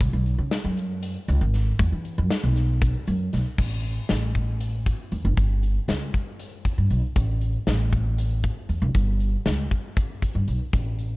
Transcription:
0.01 0.11 C#2 medium
0.01 kick loud
0.01 closed hi-hat medium
0.13 0.33 B1 medium
0.26 closed hi-hat medium
0.38 0.49 C#3 medium
0.51 snare loud
0.51 closed hi-hat medium
0.65 1.14 F#2 medium
0.77 closed hi-hat medium
1.03 closed hi-hat medium
1.28 1.38 C#2 loud
1.28 closed hi-hat medium
1.41 1.71 G#1 loud
1.54 snare soft
1.54 closed hi-hat medium
1.79 1.89 E2 medium
1.79 kick loud
1.79 closed hi-hat medium
1.92 2.19 E3 medium
2.05 closed hi-hat medium
2.18 2.28 F#2 medium
2.31 snare loud
2.31 closed hi-hat medium
2.44 2.93 B1 medium
2.56 snare soft
2.56 closed hi-hat medium
2.82 kick loud
2.82 closed hi-hat medium
3.07 3.27 F#2 medium
3.07 closed hi-hat medium
3.33 3.43 B1 medium
3.33 snare soft
3.33 closed hi-hat medium
3.58 3.98 A1 medium
3.58 kick loud
3.58 crash medium
3.84 closed hi-hat soft
4.09 4.89 A1 medium
4.09 snare loud
4.09 closed hi-hat medium
4.35 kick medium
4.35 closed hi-hat medium
4.60 closed hi-hat medium
4.86 kick medium
4.86 closed hi-hat medium
5.12 5.26 E2 medium
5.12 closed hi-hat medium
5.25 5.35 G#1 medium
5.37 5.77 G1 medium
5.37 kick loud
5.37 closed hi-hat medium
5.63 closed hi-hat medium
5.88 6.08 C#2 medium
5.88 snare loud
5.88 closed hi-hat medium
6.14 kick medium
6.14 closed hi-hat medium
6.40 closed hi-hat medium
6.65 kick medium
6.65 closed hi-hat medium
6.78 6.88 G2 medium
6.90 7.00 B1 medium
6.90 closed hi-hat medium
7.16 7.55 A1 medium
7.16 kick loud
7.16 closed hi-hat medium
7.41 closed hi-hat soft
7.67 8.46 A1 medium
7.67 snare medium
7.67 closed hi-hat medium
7.92 kick medium
7.92 closed hi-hat medium
8.18 closed hi-hat medium
8.44 kick medium
8.44 closed hi-hat medium
8.69 8.83 E2 medium
8.69 closed hi-hat medium
8.82 8.92 F#1 medium
8.95 9.34 G1 medium
8.95 kick loud
8.95 closed hi-hat medium
9.20 closed hi-hat medium
9.46 9.66 C#2 medium
9.46 snare loud
9.46 closed hi-hat medium
9.71 kick medium
9.71 closed hi-hat medium
9.97 kick loud
9.97 closed hi-hat medium
10.22 kick medium
10.22 closed hi-hat medium
10.35 10.45 G2 medium
10.48 10.58 B1 medium
10.48 closed hi-hat medium
10.73 11.13 A1 medium
10.73 kick medium
10.73 closed hi-hat medium
10.99 closed hi-hat medium

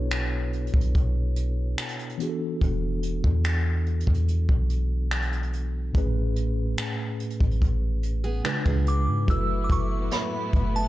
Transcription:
0.00 0.70 B1 loud
0.00 2.15 B2 medium
0.00 2.15 B3 medium
0.00 2.16 D4 medium
0.00 2.16 E4 medium
0.00 2.21 F#4 soft
0.00 2.17 A4 medium
0.00 2.21 B4 medium
0.00 2.17 C#5 medium
0.11 finger snap loud
0.11 closed hi-hat medium
0.53 closed hi-hat soft
0.67 closed hi-hat soft
0.74 0.94 B1 loud
0.74 kick medium
0.81 closed hi-hat medium
0.95 1.75 B1 loud
0.95 kick medium
0.95 closed hi-hat medium
1.36 closed hi-hat medium
1.78 finger snap loud
1.78 closed hi-hat medium
1.89 closed hi-hat medium
1.99 closed hi-hat soft
2.09 closed hi-hat soft
2.18 5.48 E3 medium
2.18 5.49 B3 medium
2.18 5.49 D4 medium
2.18 5.50 F#4 medium
2.18 closed hi-hat medium
2.23 2.28 G#4 medium
2.29 5.54 A4 medium
2.61 3.21 E1 loud
2.61 kick loud
2.61 closed hi-hat medium
3.03 closed hi-hat medium
3.24 4.04 E2 loud
3.24 kick medium
3.44 finger snap loud
3.44 closed hi-hat medium
3.86 closed hi-hat soft
4.00 closed hi-hat soft
4.07 4.47 E2 loud
4.07 kick medium
4.14 closed hi-hat medium
4.28 closed hi-hat medium
4.49 5.91 B1 loud
4.49 kick medium
4.70 closed hi-hat medium
5.11 finger snap loud
5.11 closed hi-hat medium
5.22 closed hi-hat medium
5.32 closed hi-hat soft
5.43 closed hi-hat soft
5.53 closed hi-hat medium
5.93 6.75 A1 loud
5.93 8.40 A2 medium
5.93 8.40 A3 medium
5.93 8.41 C#4 medium
5.93 8.42 G#4 medium
5.93 kick loud
5.93 closed hi-hat medium
5.98 8.42 B4 medium
6.36 closed hi-hat medium
6.77 finger snap loud
6.77 closed hi-hat medium
7.20 closed hi-hat medium
7.30 closed hi-hat soft
7.41 7.61 A1 loud
7.41 kick medium
7.41 closed hi-hat soft
7.51 closed hi-hat soft
7.61 8.42 A1 loud
7.61 kick medium
7.61 closed hi-hat medium
8.03 closed hi-hat medium
8.24 8.44 B3 medium
8.24 8.44 G#4 medium
8.44 9.28 C#3 medium
8.44 9.28 G#3 medium
8.44 9.28 D4 medium
8.44 8.65 D4 medium
8.44 9.29 F4 medium
8.44 8.64 B4 medium
8.44 9.29 B4 medium
8.44 finger snap loud
8.44 closed hi-hat medium
8.66 9.09 C#2 loud
8.66 9.25 B3 medium
8.66 9.25 G#4 medium
8.66 kick medium
8.66 closed hi-hat soft
8.87 9.26 D6 medium
8.87 closed hi-hat medium
9.07 9.27 G#2 loud
9.26 9.68 F#1 loud
9.26 10.88 A2 medium
9.26 10.88 F#3 medium
9.26 10.88 A3 medium
9.26 10.88 B3 medium
9.26 10.88 E4 medium
9.26 10.88 F#4 medium
9.26 10.88 A4 medium
9.26 9.65 E6 loud
9.26 kick loud
9.26 closed hi-hat medium
9.31 10.88 B4 medium
9.64 9.70 D6 medium
9.70 10.10 F#1 loud
9.70 9.86 C#6 medium
9.70 kick medium
9.70 closed hi-hat medium
10.11 10.77 B5 medium
10.11 snare loud
10.11 closed hi-hat medium
10.53 10.88 F#1 loud
10.53 kick medium
10.53 closed hi-hat medium
10.76 10.88 A5 medium

